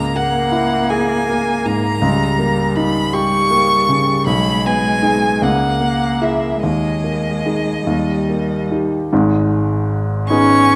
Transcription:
Already playing: grand piano C#2, cello A#3, violin A#5
0.15 grand piano A#3, violin F#5
0.52 grand piano E4
0.89 grand piano G#4, violin G#5
1.29 grand piano A#3
1.65 grand piano G#2, violin A#5
2.02 grand piano C#2, cello G3
2.39 grand piano A#3
2.76 grand piano D#4, violin B5
3.13 cello G3, grand piano G4, violin C#6
3.50 grand piano A#3
3.88 grand piano C#3
4.26 grand piano B1, cello G#3, violin B5
4.65 grand piano B3, violin G#5
5.02 grand piano D#4 G#4
5.42 grand piano C#2, cello A#3, violin F#5
5.80 grand piano A#3
6.21 grand piano E4 G#4, violin E5
6.62 grand piano D#2, cello G#3, violin D#5
7.04 grand piano A#3
7.46 grand piano D#4 G#4
7.87 grand piano D#2, cello G3
8.30 grand piano A#3
8.71 grand piano D#4 G4
9.13 grand piano G#1 G#2
10.28 grand piano B3 D#4 G#4, cello C#4, violin C#6

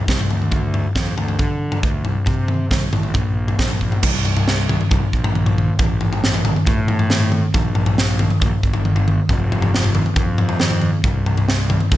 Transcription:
0.08 fingered electric bass C2, kick, snare, floor tom
0.20 floor tom
0.30 fingered electric bass D2, floor tom
0.42 mid tom
0.52 kick, floor tom
0.74 floor tom
0.95 fingered electric bass F2, kick, snare, mid tom
1.18 fingered electric bass D2, floor tom
1.28 floor tom
1.39 fingered electric bass D3, kick, floor tom
1.72 floor tom
1.83 fingered electric bass D2, kick
2.05 fingered electric bass C2, floor tom
2.26 fingered electric bass C3, kick, floor tom
2.48 floor tom, mid tom
2.71 fingered electric bass C2, kick, snare, mid tom
2.93 fingered electric bass A1, floor tom, mid tom
3.03 floor tom
3.14 fingered electric bass A#1, kick, floor tom
3.48 floor tom
3.59 fingered electric bass A#1, kick, snare, floor tom
3.70 floor tom
3.81 kick
3.92 floor tom
4.03 fingered electric bass C2, kick, floor tom, crash
4.25 floor tom
4.37 floor tom
4.48 snare
4.69 floor tom, mid tom
4.81 mid tom
4.91 fingered electric bass C2, kick, floor tom
5.13 fingered electric bass A#1, kick
5.24 floor tom
5.35 mid tom
5.46 floor tom
5.58 mid tom
5.79 fingered electric bass A1, kick, floor tom
6.01 floor tom
6.13 floor tom
6.24 snare
6.34 floor tom
6.45 floor tom, mid tom
6.56 mid tom
6.66 fingered electric bass A2, kick, floor tom
6.88 floor tom
6.99 floor tom
7.10 snare, mid tom
7.20 floor tom
7.32 mid tom
7.54 fingered electric bass A#1, kick, floor tom
7.75 floor tom
7.86 floor tom
7.98 snare
8.19 floor tom, mid tom
8.30 mid tom
8.41 fingered electric bass A#1, kick, floor tom
8.63 fingered electric bass G1, kick
8.73 floor tom
8.85 mid tom
8.96 floor tom
9.08 mid tom
9.29 fingered electric bass F1, kick, floor tom
9.52 floor tom
9.62 floor tom
9.74 snare
9.84 floor tom
9.95 floor tom, mid tom
10.06 mid tom
10.16 fingered electric bass F2, kick, floor tom
10.38 floor tom
10.49 floor tom
10.60 snare, mid tom
10.71 floor tom
10.81 mid tom
11.04 fingered electric bass C2, kick, floor tom
11.26 floor tom
11.37 floor tom
11.49 snare
11.70 floor tom, mid tom
11.81 mid tom
11.92 fingered electric bass C2, kick, floor tom

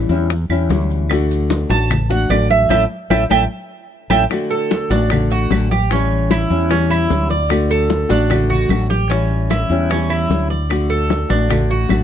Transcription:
0.09 fretless electric bass E2, nylon-string guitar G3 C#4 E4, high bongo, high conga, maracas
0.30 muted nylon-string guitar stroke, high bongo, high conga, maracas
0.49 fretless electric bass E2, nylon-string guitar G3 C#4 E4, high bongo, high conga, claves
0.69 fretless electric bass D2, nylon-string guitar E3 G3 C#4 E4, high bongo, low bongo, high conga, maracas
0.91 maracas
1.10 nylon-string guitar D3 A3 D4 F#4, high bongo, high conga, claves, maracas
1.31 high conga, maracas
1.50 high bongo, high conga, maracas
1.69 fretless electric bass A1, nylon-string guitar A3 D4 F#4, cuban tres A5, high bongo, high conga, maracas
1.90 muted nylon-string guitar stroke, high bongo, high conga, low conga, claves, maracas
2.10 nylon-string guitar A3 D4 F#4, cuban tres F#5, high bongo, high conga
2.29 fretless electric bass A1, nylon-string guitar D3 A3 D4 F#4, cuban tres D5, high bongo, low bongo, high conga, claves, maracas
2.50 cuban tres E5, high conga, maracas
2.69 fretless electric bass A1, nylon-string guitar A3 C#4 E4, cuban tres E5 G5 A5, high bongo, high conga, claves, maracas
3.10 fretless electric bass A1, nylon-string guitar A3 C#4 E4, cuban tres E5 G5 A5, high bongo, high conga, claves, maracas
3.30 fretless electric bass A1, nylon-string guitar A3 C#4 E4, cuban tres E5 G5 A5, high bongo, high conga, claves, maracas
4.10 fretless electric bass A1, nylon-string guitar A3 C#4 E4, cuban tres E5 G5 A5, high bongo, high conga, claves, maracas
4.30 nylon-string guitar D3 A3 D4 F#4, high bongo, high conga, claves, maracas
4.51 cuban tres A4, high conga
4.71 high bongo, high conga, maracas
4.90 fretless electric bass A1, nylon-string guitar A3 D4 F#4, cuban tres D4, high bongo, high conga, maracas
5.10 nylon-string guitar D3 A3 D4 F#4, high bongo, high conga, low conga, claves, maracas
5.30 cuban tres F#4, high bongo, high conga, maracas
5.50 fretless electric bass A1, nylon-string guitar D3 A3 D4 F#4, high bongo, low bongo, high conga, claves, maracas
5.71 cuban tres G4, muted nylon-string guitar stroke, high conga, maracas
5.90 nylon-string guitar E3 G3 C#4 E4, cuban tres C#4, high bongo, maracas
6.12 high conga
6.31 cuban tres E4, high bongo, high conga, claves, maracas
6.50 fretless electric bass E2, nylon-string guitar G3 C#4 E4, high bongo, high conga, maracas
6.70 nylon-string guitar E3 G3 C#4 E4, cuban tres C#4, high bongo, high conga, maracas
6.90 cuban tres E4, high bongo, high conga, claves, maracas
7.09 fretless electric bass D2, nylon-string guitar E3 G3 C#4 E4, high bongo, low bongo, high conga, maracas
7.29 cuban tres D5, muted nylon-string guitar stroke, maracas
7.49 nylon-string guitar D3 A3 D4 F#4, high bongo, high conga, claves, maracas
7.70 cuban tres A4, high conga, maracas
7.90 high bongo, high conga, maracas
8.09 fretless electric bass A1, nylon-string guitar A3 D4 F#4, cuban tres D4, high conga, maracas
8.30 nylon-string guitar D3 A3 D4 F#4, high bongo, high conga, low conga, claves, maracas
8.50 cuban tres F#4, high bongo, high conga, low conga
8.69 fretless electric bass A1, nylon-string guitar D3 A3 D4 F#4, high bongo, low bongo, high conga, claves, maracas
8.90 cuban tres G4, muted nylon-string guitar stroke, high conga, maracas
9.09 nylon-string guitar E3 G3 C#4 E4, cuban tres C#4, high bongo, maracas
9.31 high conga
9.50 cuban tres E4, high bongo, high conga, claves, maracas
9.70 fretless electric bass E2, nylon-string guitar G3 C#4 E4, high bongo, high conga, maracas
9.90 nylon-string guitar E3 G3 C#4 E4, cuban tres C#4, high bongo, high conga, maracas
10.10 cuban tres E4, high bongo, high conga, claves
10.30 fretless electric bass D2, nylon-string guitar E3 G3 C#4 E4, high bongo, low bongo, high conga, maracas
10.50 cuban tres D5, muted nylon-string guitar stroke, maracas
10.69 nylon-string guitar D3 A3 D4 F#4, high bongo, high conga, claves, maracas
10.90 cuban tres A4, high conga
11.10 high bongo, high conga, maracas
11.29 fretless electric bass A1, nylon-string guitar A3 D4 F#4, cuban tres D4, high bongo, high conga, maracas
11.49 nylon-string guitar D3 A3 D4 F#4, high bongo, high conga, low conga, claves, maracas
11.70 cuban tres F#4, high bongo, high conga
11.89 fretless electric bass A1, nylon-string guitar D3 A3 D4 F#4, high bongo, low bongo, high conga, claves, maracas

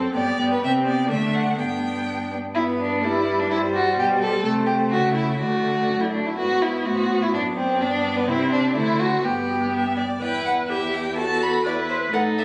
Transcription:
Already playing: viola C4, violin A4
0.14 cello G2, viola B3, violin G4 D5
0.37 cello G2, viola B3, violin G4
0.52 violin B4
0.59 cello C3, viola C4, violin G4
0.64 violin E5
0.86 viola B3, violin D5
1.07 cello D3, viola A3, violin D4 E5
1.34 violin F#5
1.56 cello G2, viola B3, violin D4 G5
2.55 cello G2, viola B3, violin E4 B4
2.79 violin D4
3.04 viola G3, violin E4 B4
3.40 violin D4
3.50 cello G2, viola G3, violin E4 C5
3.74 violin F#4
3.98 cello B2, violin G4
4.21 violin A4
4.44 cello C3, viola A3, violin A4 C5
4.66 violin G4
4.90 cello C#3, violin F#4 E5
5.14 violin E4
5.38 cello D3, viola A3, violin F#4 D5
5.88 cello F#2
6.01 violin E4
6.12 violin D4
6.26 violin E4
6.36 cello G#2, viola B3, violin F#4 B4
6.62 violin E4
6.84 cello A2, violin F#4 C5
7.22 violin E4
7.32 cello F#2, violin D4 D5
7.56 violin C4
7.79 cello G2, viola B3, violin D4 D5
8.17 violin B3
8.27 cello C3, viola C4, violin E4 C5
8.52 violin D4
8.75 cello D3, viola A3, violin E4 C5
9.00 violin F#4
9.22 cello G2, viola B3, violin G4 B4
9.72 violin E5
9.97 violin D5
10.21 cello E2, violin E4 G5, viola B4
10.45 violin F#5
10.69 violin E4 E5, viola G4
10.94 violin G5
11.16 violin F#4 A5, viola A4
11.42 violin B5
11.65 violin E4 D5, viola B4
11.89 violin C5
12.13 cello A2, violin D#4 F#5, viola A4
12.38 violin E5

